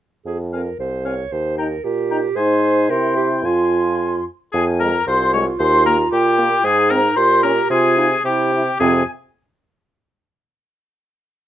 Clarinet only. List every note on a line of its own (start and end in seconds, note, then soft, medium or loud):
0.26 0.38 G#4 soft
0.53 0.79 A#4 soft
0.79 1.07 C5 soft
1.06 1.34 C#5 medium
1.32 1.57 C5 medium
1.58 1.86 A#4 medium
1.84 2.38 G4 medium
2.36 2.91 C5 medium
2.90 3.16 A#4 medium
3.17 3.29 G4 medium
3.44 4.25 F4 medium
5.07 6.60 F4 medium
6.64 7.18 D#4 medium
7.17 7.72 G4 medium
7.70 7.97 F4 medium
7.97 8.10 D#4 medium
8.25 8.52 E4 medium
8.80 9.03 C4 medium